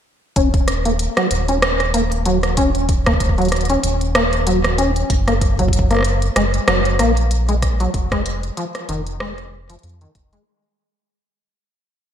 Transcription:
0.36 analog synth bass D#1, acid bass C#4, kick, closed hi-hat
0.54 kick, closed hi-hat
0.68 cross-stick, closed hi-hat
0.85 acid bass A#3, closed hi-hat
0.99 closed hi-hat
1.17 acid bass F#3, cross-stick, closed hi-hat
1.31 analog synth bass D#1, closed hi-hat
1.48 acid bass C#4, closed hi-hat
1.62 cross-stick, closed hi-hat
1.80 cross-stick, closed hi-hat
1.94 acid bass A#3, closed hi-hat
2.12 closed hi-hat
2.26 acid bass F#3, closed hi-hat
2.43 cross-stick, closed hi-hat
2.57 acid bass C#4, kick, closed hi-hat
2.75 closed hi-hat
2.89 kick, closed hi-hat
3.06 acid bass A#3, kick, cross-stick, closed hi-hat
3.13 kick
3.20 kick, closed hi-hat
3.29 kick
3.38 acid bass F#3, closed hi-hat
3.42 closed hi-hat
3.45 closed hi-hat
3.49 cross-stick, closed hi-hat
3.52 closed hi-hat
3.56 closed hi-hat
3.61 closed hi-hat
3.65 closed hi-hat
3.70 acid bass C#4, closed hi-hat
3.83 analog synth bass D#1, closed hi-hat
4.01 closed hi-hat
4.15 acid bass A#3, cross-stick, closed hi-hat
4.33 closed hi-hat
4.47 acid bass F#3, closed hi-hat
4.64 cross-stick, closed hi-hat
4.78 acid bass C#4, closed hi-hat
4.96 closed hi-hat
5.10 analog synth bass F#1, kick, closed hi-hat
5.28 acid bass A#3, cross-stick, closed hi-hat
5.41 kick, closed hi-hat
5.59 acid bass F#3, kick, closed hi-hat
5.68 kick
5.73 closed hi-hat
5.79 kick
5.91 acid bass A#3, cross-stick, closed hi-hat
5.93 cross-stick
5.95 cross-stick
5.97 cross-stick
5.99 cross-stick
6.01 cross-stick
6.03 cross-stick, closed hi-hat
6.22 closed hi-hat
6.36 analog synth bass F#1, acid bass G#3, cross-stick, closed hi-hat
6.54 closed hi-hat
6.68 analog synth bass F#1, acid bass F#3, cross-stick, closed hi-hat
6.85 closed hi-hat
6.99 analog synth bass A#1, acid bass A#3, cross-stick, closed hi-hat
7.17 closed hi-hat
7.31 closed hi-hat
7.49 acid bass G#3, closed hi-hat
7.62 kick, cross-stick, closed hi-hat
7.80 acid bass F#3, closed hi-hat
7.94 analog synth bass F1, kick, closed hi-hat
8.12 acid bass G#3, kick, cross-stick, closed hi-hat
8.26 closed hi-hat
8.43 closed hi-hat
8.57 acid bass F3, closed hi-hat
8.75 cross-stick, closed hi-hat
8.89 analog synth bass F1, acid bass D#3, closed hi-hat
9.07 closed hi-hat
9.20 acid bass G#3, cross-stick
9.38 cross-stick, closed hi-hat
9.70 acid bass F3, closed hi-hat
9.79 closed hi-hat
9.83 analog synth bass F2, closed hi-hat
9.89 closed hi-hat
10.01 acid bass D#3, closed hi-hat
10.15 analog synth bass F1, kick, closed hi-hat
10.33 acid bass G#3, closed hi-hat

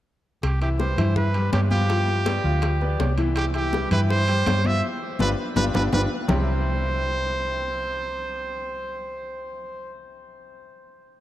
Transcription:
0.43 fingered electric bass C2, trumpet G4, high bongo, high conga, high timbale
0.61 grand piano E3 E4 E5, trumpet G4, high bongo, high conga, high timbale
0.79 grand piano G3 G4 B4, trumpet C5, high bongo, high conga, low timbale
0.97 fingered electric bass G2, grand piano E3 E4 E5, high bongo, high conga, low conga, high timbale
1.16 trumpet B4, high bongo, high conga, low conga
1.34 grand piano G3 G4 B4, high bongo, high conga, high timbale
1.53 fingered electric bass G2, trumpet G4, high bongo, low bongo, high conga, high timbale, low timbale
1.71 grand piano F3 F4 F5, trumpet G4, high conga
1.89 grand piano F3 F4 F5, high bongo, high conga, high timbale
2.08 high bongo, high conga
2.26 grand piano B3 B4 D5, high bongo, high conga, high timbale, low timbale
2.44 fingered electric bass D2, grand piano F3 F4 F5, high conga
2.62 high bongo, high conga, high timbale
2.81 grand piano B3 B4 D5, high bongo, high conga
3.00 fingered electric bass C2, high bongo, low bongo, high conga, high timbale, low timbale
3.18 grand piano E3 E4 E5, high bongo, high conga, high timbale
3.36 trumpet G4, high bongo, high conga, high timbale
3.54 grand piano E3 E4 E5, trumpet G4, high bongo, high conga, high timbale
3.73 grand piano G3 G4 B4, high bongo, high conga, low timbale
3.91 fingered electric bass G2, grand piano E3 E4 E5, trumpet B4, high bongo, high conga, low conga, high timbale
4.10 trumpet C5, high bongo, high conga
4.28 grand piano G3 G4 C5, high bongo, high conga, high timbale
4.46 fingered electric bass G2, high bongo, low bongo, high conga, high timbale, low timbale
4.64 grand piano F3 F4 F5, trumpet E5, high conga
5.19 fingered electric bass G1, grand piano D4 F4 G4, trumpet B4, low bongo, high conga, high timbale
5.56 fingered electric bass G1, grand piano D4 F4 G4, trumpet B4, low bongo, high conga, high timbale
5.74 fingered electric bass G1, grand piano D4 F4 G4, trumpet B4, low bongo, high conga, high timbale
5.92 fingered electric bass G1, grand piano D4 F4 G4, trumpet B4, low bongo, high conga, high timbale
6.28 fingered electric bass C2, grand piano C3 G3 C4 E4 G4, trumpet C5, low bongo, low conga, low timbale

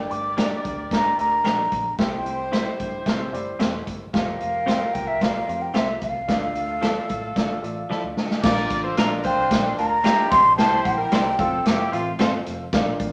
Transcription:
Already playing: grand piano G2 D4 G4 A#4 D5, saxophone section G4 A#4 D5, flute G5
0.11 fingered electric bass G1, flute D6, closed hi-hat
0.37 clean electric guitar A#3 D4 G4 A#4, grand piano D4 G4 A#4 D5, snare, closed hi-hat
0.65 fingered electric bass D2, kick, closed hi-hat
0.91 fingered electric bass G2, grand piano D4 G4 A#4 D5, flute A#5, kick, snare, closed hi-hat
1.18 fingered electric bass D2, grand piano D4 G4 A#4 E5, flute A#5, closed hi-hat
1.44 fingered electric bass A#1, clean electric guitar A#3 D4 G4 A#4, grand piano D4 G4 A#4 D5, snare, closed hi-hat
1.72 fingered electric bass A#1, kick, closed hi-hat
1.98 fingered electric bass C2, grand piano C3 E4 G4 C5 E5, saxophone section E4 G4 C5, flute G5, kick, snare, closed hi-hat
2.25 fingered electric bass C2, closed hi-hat
2.52 clean electric guitar C4 E4 G4 C5, grand piano E4 G4 C5 E5, snare, closed hi-hat
2.79 fingered electric bass G2, kick, closed hi-hat
3.06 fingered electric bass C3, grand piano E4 G4 C5 E5, kick, snare, closed hi-hat
3.32 fingered electric bass G1, grand piano E4 G4 C5 D5, closed hi-hat
3.59 fingered electric bass E1, clean electric guitar C4 E4 G4 C5, grand piano E4 G4 C5 E5, snare, closed hi-hat
3.87 fingered electric bass G1, kick, closed hi-hat
4.13 fingered electric bass F1, grand piano F4 G4 C5 F5, saxophone section F4 G4 A#4, kick, snare, closed hi-hat
4.40 fingered electric bass F1, flute F5, closed hi-hat
4.66 clean electric guitar C4 F4 G4 C5, grand piano F4 G4 C5 E5, snare, closed hi-hat
4.94 fingered electric bass C2, flute G5, kick, closed hi-hat
5.07 flute E5
5.21 grand piano F4 G4 C5 D5, flute F5, kick, snare, closed hi-hat
5.48 fingered electric bass F2, grand piano F4 G4 C5 F5, closed hi-hat
5.62 flute G5
5.74 fingered electric bass C2, clean electric guitar C4 F4 G4 C5, grand piano F4 G4 C5 E5, flute E5, snare, closed hi-hat
6.01 fingered electric bass C2, flute F5, kick, closed hi-hat
6.28 fingered electric bass D2, grand piano D3 F4 A4 D5 F5, saxophone section A3 F4 A4, kick, snare, closed hi-hat
6.55 fingered electric bass D2, closed hi-hat
6.82 clean electric guitar F3 A3 E4 A4, grand piano F4 A4 D5 F5, snare, closed hi-hat
7.09 fingered electric bass A2, kick, closed hi-hat
7.36 fingered electric bass D3, grand piano F4 A4 D5 E5, kick, snare, closed hi-hat
7.62 fingered electric bass A1, grand piano F4 A4 D5 E5, closed hi-hat
7.90 clean electric guitar F3 A3 E4 A4, grand piano E4 A4 D5 E5 F5, muted fingered electric bass stroke, snare
7.97 grand piano F4
8.04 fingered electric bass D2
8.17 fingered electric bass D3, grand piano A5, snare
8.31 snare
8.43 fingered electric bass A#1, grand piano A#2 D4 F4 A#4 D5 F5, saxophone section F4 A#4 D5, kick, snare, crash
8.70 fingered electric bass A1, kick, closed hi-hat
8.84 saxophone section F4 A4 C5
8.97 fingered electric bass A#1, clean electric guitar A#3 D4 F4 A#4, saxophone section D4 F4 A#4, grand piano D4 F4 A#4 D5 E5, snare, closed hi-hat
9.23 saxophone section D4 F4 C5, flute G5, kick, closed hi-hat
9.37 fingered electric bass C2
9.51 fingered electric bass A#1, grand piano D4 F4 A#4 D5 F5, kick, snare, closed hi-hat
9.77 fingered electric bass D2, saxophone section D4 F4 A#4, flute A#5, closed hi-hat
10.04 clean electric guitar A#3 D4 F4 A#4, saxophone section D4 E4 G4, grand piano D4 F4 A#4 D5 E5, snare, closed hi-hat
10.31 fingered electric bass C2, grand piano C3 E4 G4 C5 D5 E5, flute C6, kick, snare, closed hi-hat
10.46 fingered electric bass A#1
10.57 fingered electric bass C2, saxophone section E4 G4 C5, flute A5, snare, closed hi-hat
10.84 fingered electric bass A#1, flute G5, kick, closed hi-hat
10.98 saxophone section E4 G4 A#4
11.12 fingered electric bass C2, clean electric guitar G3 D4 E4 C5, grand piano E4 G4 C5 D5 G5, snare, closed hi-hat
11.39 fingered electric bass F1, saxophone section C4 F4 A4, grand piano C4 F4 A4 C5 F5, kick, closed hi-hat
11.65 fingered electric bass F1, saxophone section C4 E4 G4, snare, closed hi-hat
11.92 fingered electric bass A1, saxophone section A3 C4 F4, closed hi-hat
12.19 fingered electric bass G1, clean electric guitar C4 F4 A4 C5, grand piano C4 F4 A4 C5 F5, snare, closed hi-hat
12.46 fingered electric bass F1, closed hi-hat
12.73 fingered electric bass A#1, grand piano A#2 D4 F4 A#4 D5 F5, kick, snare, closed hi-hat
13.00 fingered electric bass A1, kick, closed hi-hat

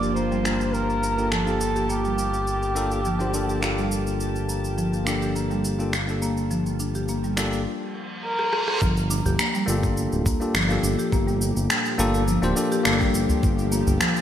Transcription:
Already playing: analog synth bass G1, synth drone F3 A#3 G4, tine electric piano A#3 D4 F4 G4 A5, synth texture F4 A5, kamancheh D5
0.02 marimba G4, cabasa
0.16 marimba A#3, kamancheh C5, cabasa
0.32 marimba G3, cabasa
0.43 tine electric piano A#3 D4 F4 G4 A#4, finger snap, cabasa
0.61 cabasa
0.73 kamancheh A#4, cabasa
0.90 cabasa
1.03 marimba A#3, cabasa
1.17 tine electric piano A#3 D4 F4 G4 A4, cabasa
1.31 marimba F3, kamancheh A4, finger snap, cabasa
1.45 tine electric piano A#3 D4 F4 G4 A4, cabasa
1.60 marimba D4, cabasa
1.76 marimba G4, cabasa
1.89 marimba A#3, kamancheh G4, cabasa
2.05 marimba G3, cabasa
2.18 cabasa
2.34 cabasa
2.47 cabasa
2.63 cabasa
2.75 tine electric piano A#3 D4 F4 G4 A4, marimba A#3, cabasa
2.91 cabasa
3.05 marimba F3, cabasa
3.19 tine electric piano A#3 D4 F4 G4 C5, cabasa
3.33 tine electric piano A#3 D4 F4 G4 A4, marimba D4, cabasa
3.49 marimba G4, cabasa
3.61 tine electric piano A#3 D4 F4 G4, marimba A#3, finger snap, cabasa
3.65 tine electric piano A4
3.78 marimba G3, cabasa
3.92 cabasa
4.07 cabasa
4.20 cabasa
4.36 cabasa
4.49 marimba A#3, cabasa
4.64 cabasa
4.78 marimba F3, cabasa
4.93 cabasa
5.05 tine electric piano A#3 D4 F4 G4, marimba D4, finger snap, cabasa
5.09 tine electric piano A4
5.22 marimba G4, cabasa
5.35 marimba A#3, cabasa
5.51 marimba G3, cabasa
5.65 cabasa
5.79 tine electric piano A#3 D4 F4 G4 A4, cabasa
5.93 finger snap, cabasa
6.07 tine electric piano A#3 D4 F4 G4, cabasa
6.11 tine electric piano A4
6.22 marimba A#3, cabasa
6.37 cabasa
6.51 marimba F3, cabasa
6.66 cabasa
6.80 marimba D4, cabasa
6.95 marimba G4, cabasa
7.08 marimba A#3, cabasa
7.24 marimba G3, cabasa
7.37 tine electric piano A#3 D4 F4 G4 A4, finger snap, cabasa
7.53 cabasa
7.66 reverse cymbal
8.24 kamancheh A#4
8.39 cross-stick
8.53 cross-stick
8.68 cross-stick
8.81 analog synth bass G1, synth drone A#2 F3 G4, marimba F3, kick, cabasa
8.97 cabasa
9.10 marimba D4, cabasa
9.25 analog synth bass G1, marimba G4, udu, cabasa
9.39 marimba A#3, finger snap, cabasa
9.55 marimba G3, cabasa
9.66 analog synth bass G1, tine electric piano A#3 D4 F4 G4 A4, cabasa
9.83 kick, cabasa
9.97 cabasa
10.12 analog synth bass D1, cabasa
10.25 marimba A#3, kick, udu, cabasa
10.40 tine electric piano A#3 D4 F4 G4 A4, cabasa
10.54 analog synth bass G1, marimba F3, finger snap, cabasa
10.68 tine electric piano A#3 D4 F4 G4 A4, cabasa
10.83 analog synth bass G1, marimba D4, cabasa
10.99 marimba G4, cabasa
11.12 analog synth bass G1, marimba A#3, kick, cabasa
11.27 marimba G3, cabasa
11.41 cabasa
11.56 analog synth bass G1, cabasa
11.70 finger snap, cabasa
11.86 cabasa
11.98 analog synth bass G1, tine electric piano A#3 D4 F4 G4 A4, marimba A#3, cabasa
12.14 cabasa
12.28 marimba F3, cabasa
12.42 analog synth bass D1, tine electric piano A#3 D4 F4 G4 C5, cabasa
12.55 tine electric piano A#3 D4 F4 G4 A4, marimba D4, cabasa
12.72 marimba G4, cabasa
12.83 analog synth bass G1, tine electric piano A#3 D4 F4 G4, marimba A#3, finger snap, cabasa
12.88 tine electric piano A4
13.01 marimba G3, kick, cabasa
13.14 analog synth bass G1, cabasa
13.29 udu, cabasa
13.43 analog synth bass G1, kick, cabasa
13.59 cabasa
13.72 marimba A#3, cabasa
13.87 analog synth bass G1, udu, cabasa
14.01 marimba F3, finger snap, cabasa
14.16 cabasa

